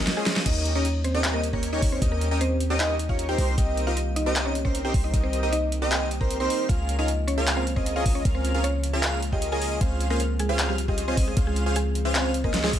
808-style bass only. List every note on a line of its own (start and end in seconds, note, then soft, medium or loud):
0.46 2.00 D#2 medium
2.02 3.36 D#2 medium
3.38 4.92 C2 medium
4.94 6.48 C2 medium
6.69 8.23 C#2 medium
8.25 9.79 C#2 medium
9.81 11.35 C#2 medium
11.37 12.79 C#2 medium